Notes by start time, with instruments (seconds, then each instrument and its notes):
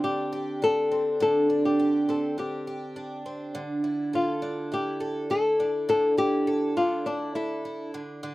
Already playing: twelve-string acoustic guitar D3 C4 G4
0.04 twelve-string acoustic guitar D4, nylon-string guitar G4
0.33 twelve-string acoustic guitar G4
0.62 twelve-string acoustic guitar D4, nylon-string guitar A4
0.91 twelve-string acoustic guitar C4
1.20 twelve-string acoustic guitar D3, nylon-string guitar A4
1.50 twelve-string acoustic guitar D4
1.65 nylon-string guitar G4
1.79 twelve-string acoustic guitar G4
2.09 twelve-string acoustic guitar C4, nylon-string guitar A4
2.38 twelve-string acoustic guitar D4, nylon-string guitar G4
2.67 twelve-string acoustic guitar G4
2.96 twelve-string acoustic guitar D4
3.26 twelve-string acoustic guitar C4
3.55 twelve-string acoustic guitar D3
3.84 twelve-string acoustic guitar E4
4.13 nylon-string guitar F4, twelve-string acoustic guitar A4
4.42 twelve-string acoustic guitar D4
4.72 twelve-string acoustic guitar E4, nylon-string guitar G4
5.00 twelve-string acoustic guitar A4
5.30 twelve-string acoustic guitar E4, nylon-string guitar A4
5.60 twelve-string acoustic guitar D4
5.89 twelve-string acoustic guitar D3, nylon-string guitar A4
6.17 twelve-string acoustic guitar E4, nylon-string guitar G4
6.47 twelve-string acoustic guitar A4
6.77 twelve-string acoustic guitar D4, nylon-string guitar F4
7.06 nylon-string guitar D4, twelve-string acoustic guitar E4
7.35 nylon-string guitar E4, twelve-string acoustic guitar A4
7.65 twelve-string acoustic guitar E4
7.94 twelve-string acoustic guitar D3
8.23 twelve-string acoustic guitar D3